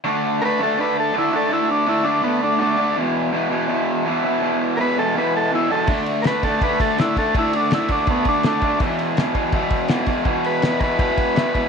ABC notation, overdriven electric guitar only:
X:1
M:4/4
L:1/8
Q:1/4=164
K:Dmix
V:1 name="Overdriven electric guitar" clef=bass
[D,A,D]2 [D,A,D] [D,A,D] [D,A,D]2 [D,A,D] [D,A,D] | [D,A,D]2 [D,A,D] [D,A,D] [D,A,D]2 [D,A,D] [D,A,D] | [E,,B,,E,]2 [E,,B,,E,] [E,,B,,E,] [E,,B,,E,]2 [E,,B,,E,] [E,,B,,E,] | [E,,B,,E,]2 [E,,B,,E,] [E,,B,,E,] [E,,B,,E,]2 [E,,B,,E,] [E,,B,,E,] |
[D,A,D]2 [D,A,D] [D,A,D] [D,A,D]2 [D,A,D] [D,A,D] | [D,A,D]2 [D,A,D] [D,A,D] [D,A,D]2 [D,A,D] [D,A,D] | [E,,B,,E,]2 [E,,B,,E,] [E,,B,,E,] [E,,B,,E,]2 [E,,B,,E,] [E,,B,,E,] | [E,,B,,E,]2 [E,,B,,E,] [E,,B,,E,] [E,,B,,E,]2 [E,,B,,E,] [E,,B,,E,] |]